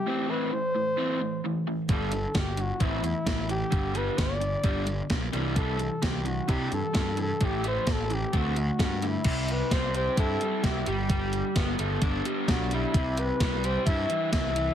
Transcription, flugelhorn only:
X:1
M:4/4
L:1/8
Q:1/4=130
K:Clyd
V:1 name="Flugelhorn"
G B c4 z2 | A2 G F E E2 G- | G B d4 z2 | A2 G F G A2 A |
G c A G F2 F E- | E B c c A2 G G- | G3 z3 F E- | E B2 c e2 e2 |]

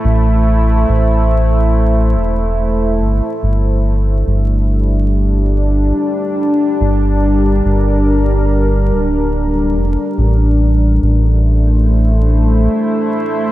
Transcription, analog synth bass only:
X:1
M:4/4
L:1/8
Q:"Swing 16ths" 1/4=71
K:Gdor
V:1 name="Analog synth bass" clef=bass
A,,,2 A,,,3 E,,,2 G,,, | G,,,2 G,,,4 z2 | G,,,2 G,,,3 D,,,2 F,,, | A,,,2 A,,,4 z2 |]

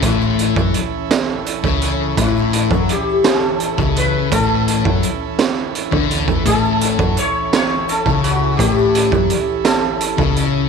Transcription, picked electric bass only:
X:1
M:6/8
L:1/16
Q:3/8=56
K:Amix
V:1 name="Picked electric bass" clef=bass
A,,,3 F,, z4 z C,,3 | A,,,3 F,, z4 z C,,3 | A,,,3 F,, z4 z D,,2 E,, | A,,,3 F,, z4 z C,,3 |
A,,,3 F,, z4 z C,,3 |]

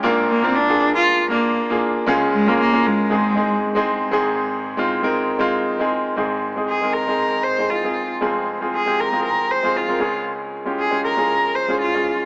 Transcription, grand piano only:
X:1
M:4/4
L:1/16
Q:"Swing 16ths" 1/4=117
K:Ab
V:1 name="Grand piano"
[B,=DFB]2 z [B,DFB]2 [B,DFA]4 z [B,DFB]2 z [B,DFA]2 z | [A,DFA]2 z [A,DFB]2 [A,DFB]3 [A,CEA]2 [A,CEA]2 z [A,CEA]2 z | [A,CEA]4 z [A,CEF]2 [A,CEB]2 z [A,CEF]2 z [A,CEA]2 z | [A,CEA]2 z [A,CEA]2 [A,CEB]2 [A,CEA]3 z [A,CEA]2 [A,CEA]2 z |
[A,CFA]2 z [A,CFA]2 [A,CFG]2 [A,CFGA]3 z [A,CFA]2 [A,CFB] [A,DFA]2- | [A,DFA]2 z [A,DFG]2 [A,DFG]2 [A,DFA]3 z [A,DFA]2 [A,DFA]2 z |]
V:2 name="Grand piano" clef=bass
[B,,,B,,]16 | [D,,D,]8 [A,,,A,,]8 | [A,,,A,,]16 | [A,,,A,,]16 |
[F,,,F,,]12- [F,,,F,,]2 [D,,D,]2- | [D,,D,]12- [D,,D,]2 z2 |]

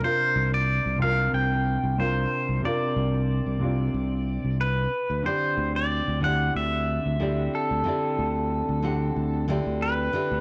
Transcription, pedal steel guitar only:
X:1
M:4/4
L:1/16
Q:"Swing 16ths" 1/4=92
K:Dphr
V:1 name="Pedal steel guitar"
c3 d3 f2 g4 c4 | d12 =B4 | c3 d3 ^f2 =e6 A2- | A8- A2 z2 =B4 |]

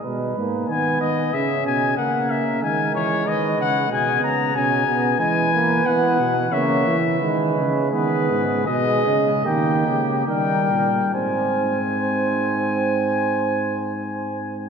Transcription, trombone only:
X:1
M:4/4
L:1/8
Q:1/4=88
K:G#m
V:1 name="Trombone"
G, A, B,2 C2 A,2 | G,4 B,2 C B, | G, A, B,2 A, z G,2 | B,2 G,2 A,2 =G,2 |
^B,8 |]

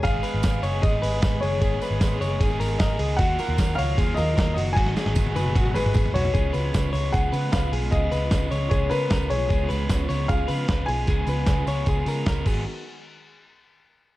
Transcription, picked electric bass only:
X:1
M:4/4
L:1/16
Q:1/4=152
K:C#mix
V:1 name="Picked electric bass" clef=bass
G,,,2 z G,,, G,,,2 F,,,2 G,,,2 G,,,2 G,,,2 F,,,2 | G,,,2 z G,,, G,,,2 F,,,2 G,,,2 G,,,2 G,,,2 C,,2 | D,,2 z D,, D,,2 C,,2 D,,2 D,,2 D,,2 F,,,2 | G,,,2 z G,,, z2 F,,,2 G,,,2 G,,,2 G,,,2 B,,,2 |
C,,2 C,,2 C,,2 C,,2 C,,2 C,2 C,,2 B,,,2 | C,,2 C,,2 C,,2 C,,2 C,,2 C,2 C,,2 B,,,2 | C,,2 C,,2 C,,2 C,,2 C,,2 C,2 C,,2 B,,,2 | C,,2 C,,2 C,,2 C,,2 C,,2 C,2 C,,2 G,,,2 |
z16 |]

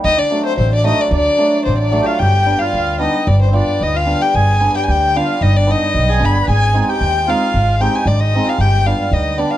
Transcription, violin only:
X:1
M:2/4
L:1/16
Q:1/4=112
K:none
V:1 name="Violin"
_e d2 c c d e d | d4 c d2 f | g3 f3 _e2 | d c d2 _e f2 g |
_a3 g/2 a/2 g2 f2 | _e d e4 b2 | _a2- a/2 a/2 g3 f2- | f2 g _a d _e2 f |
g2 f2 _e2 d f |]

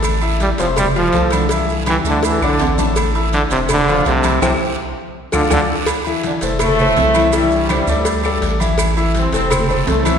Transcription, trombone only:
X:1
M:4/4
L:1/8
Q:1/4=165
K:Flyd
V:1 name="Trombone" clef=bass
z2 G, F, G, F,2 D, | z2 E, D, E, D,2 A,, | z2 D, C, D,2 C,2 | C, z4 D, D, z |
z8 | z8 | z8 |]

